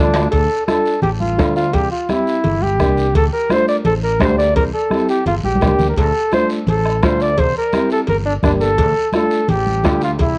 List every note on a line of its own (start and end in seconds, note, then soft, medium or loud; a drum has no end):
0.00 0.26 D2 loud
0.00 0.22 D4 medium
0.00 0.30 D4 loud
0.00 0.22 F4 medium
0.00 0.22 A4 medium
0.14 bombo rim medium
0.14 low timbale loud
0.14 short guiro medium
0.31 0.47 D2 medium
0.31 0.65 A4 medium
0.31 bombo low medium
0.31 cowbell loud
0.31 long guiro medium
0.67 0.92 D4 medium
0.67 0.92 F4 medium
0.67 1.00 A4 medium
0.67 0.93 A4 medium
0.67 bombo rim medium
0.67 high conga medium
0.67 short guiro medium
0.86 short guiro medium
1.02 1.39 A1 medium
1.02 1.10 G4 medium
1.02 cowbell medium
1.02 low conga medium
1.02 long guiro medium
1.20 1.53 F4 medium
1.20 high conga medium
1.38 1.74 D2 medium
1.38 1.63 D4 medium
1.38 1.63 F4 medium
1.38 1.63 A4 medium
1.38 bombo low medium
1.38 bombo rim medium
1.38 high conga medium
1.38 short guiro medium
1.56 1.75 F4 loud
1.56 short guiro medium
1.73 1.88 C2 loud
1.73 1.91 G4 loud
1.73 bombo low medium
1.73 cowbell loud
1.73 low conga medium
1.73 long guiro medium
1.91 2.13 F4 medium
2.09 2.34 C4 medium
2.09 2.34 E4 medium
2.09 2.64 E4 loud
2.09 2.34 G4 medium
2.09 bombo rim medium
2.09 high conga medium
2.09 short guiro medium
2.27 short guiro medium
2.44 2.80 G1 medium
2.44 cowbell medium
2.44 low conga medium
2.44 long guiro medium
2.62 3.15 G4 medium
2.62 high conga medium
2.80 3.15 C2 medium
2.80 3.04 A#3 medium
2.80 3.04 D4 medium
2.80 3.05 G4 medium
2.80 bombo low medium
2.80 bombo rim medium
2.80 high conga medium
2.80 low conga medium
2.80 short guiro medium
2.97 short guiro medium
3.15 3.29 D2 loud
3.15 3.24 A4 loud
3.15 bombo low medium
3.15 cowbell loud
3.15 low conga medium
3.15 long guiro medium
3.33 3.54 A#4 medium
3.50 3.75 A3 medium
3.50 3.75 D4 medium
3.50 3.75 F4 medium
3.50 3.68 C5 loud
3.50 bombo rim medium
3.50 high conga medium
3.50 short guiro medium
3.68 3.76 D5 loud
3.68 short guiro medium
3.85 4.21 A1 medium
3.85 3.94 A4 loud
3.85 cowbell medium
3.85 low conga medium
3.85 long guiro medium
4.04 4.23 A#4 medium
4.20 4.56 D2 medium
4.20 4.45 A3 medium
4.20 4.45 D4 medium
4.20 4.45 G4 medium
4.20 4.38 C5 medium
4.20 bombo low medium
4.20 bombo rim medium
4.20 high conga medium
4.20 low timbale medium
4.20 short guiro medium
4.38 4.54 D5 loud
4.38 short guiro medium
4.56 4.70 C2 loud
4.56 4.64 A#4 loud
4.56 bombo low medium
4.56 cowbell loud
4.56 low conga medium
4.56 long guiro medium
4.74 5.06 A4 medium
4.90 5.15 C4 medium
4.90 5.15 E4 medium
4.90 5.15 G4 medium
4.90 bombo rim medium
4.90 high conga medium
4.90 short guiro medium
5.09 5.25 G4 medium
5.09 short guiro medium
5.26 5.40 G1 medium
5.26 5.35 F4 medium
5.26 cowbell medium
5.26 low conga medium
5.26 long guiro medium
5.43 5.60 A#1 medium
5.43 5.87 G4 medium
5.43 high conga medium
5.55 high conga loud
5.61 5.78 C2 medium
5.61 5.86 A#3 medium
5.61 5.86 D4 medium
5.61 5.86 G4 medium
5.61 bombo low medium
5.61 bombo rim medium
5.61 low timbale medium
5.61 short guiro medium
5.67 low conga medium
5.79 5.97 D2 medium
5.79 low conga medium
5.79 short guiro medium
5.89 5.98 A#4 medium
5.96 6.11 D2 loud
5.96 6.32 A4 loud
5.96 bombo low medium
5.96 cowbell loud
5.96 long guiro medium
6.31 6.56 A3 medium
6.31 6.57 D4 medium
6.31 6.57 F4 medium
6.31 6.49 C5 loud
6.31 bombo rim medium
6.31 high conga medium
6.31 short guiro medium
6.49 short guiro medium
6.66 7.03 A1 medium
6.66 7.04 A4 medium
6.66 cowbell medium
6.66 low conga medium
6.66 long guiro medium
6.85 bombo rim medium
7.03 7.38 D2 loud
7.03 7.27 A3 medium
7.03 7.28 D4 medium
7.03 7.28 F4 medium
7.03 7.23 C5 medium
7.03 bombo low medium
7.03 bombo rim medium
7.03 high conga medium
7.03 short guiro medium
7.20 7.41 D5 loud
7.20 short guiro medium
7.38 7.52 C2 medium
7.38 7.56 C5 loud
7.38 bombo low medium
7.38 cowbell loud
7.38 low conga medium
7.38 long guiro medium
7.58 7.89 A#4 medium
7.72 7.97 C4 medium
7.72 7.97 E4 medium
7.72 7.98 G4 medium
7.72 bombo rim medium
7.72 high conga medium
7.72 short guiro medium
7.90 8.00 A4 medium
7.90 short guiro medium
8.07 8.36 G1 medium
8.07 8.17 A#4 medium
8.07 cowbell medium
8.07 low conga medium
8.07 long guiro medium
8.26 8.34 D4 medium
8.43 8.80 G1 medium
8.43 8.68 A#3 medium
8.43 8.68 D4 medium
8.43 8.52 D4 medium
8.43 8.68 G4 medium
8.43 bombo low medium
8.43 bombo rim medium
8.43 high conga medium
8.43 low conga medium
8.43 short guiro medium
8.61 9.10 A4 loud
8.61 short guiro medium
8.77 8.93 D2 loud
8.77 bombo low medium
8.77 cowbell loud
8.77 low conga medium
8.77 long guiro medium
9.13 9.38 A3 medium
9.13 9.39 D4 medium
9.13 9.39 F4 medium
9.13 9.47 A4 medium
9.13 bombo rim medium
9.13 high conga medium
9.13 short guiro medium
9.31 short guiro medium
9.48 9.85 A1 medium
9.48 9.99 G4 medium
9.48 cowbell medium
9.48 low conga medium
9.48 long guiro medium
9.67 high conga medium
9.83 10.20 D2 loud
9.83 10.08 A3 medium
9.83 10.09 D4 medium
9.83 10.09 F4 medium
9.83 bombo low medium
9.83 bombo rim medium
9.83 high conga medium
9.83 short guiro medium
10.01 10.11 F4 medium
10.01 short guiro medium
10.19 10.34 C2 loud
10.19 10.38 E4 medium
10.19 bombo low medium
10.19 cowbell loud
10.19 low conga medium
10.19 long guiro medium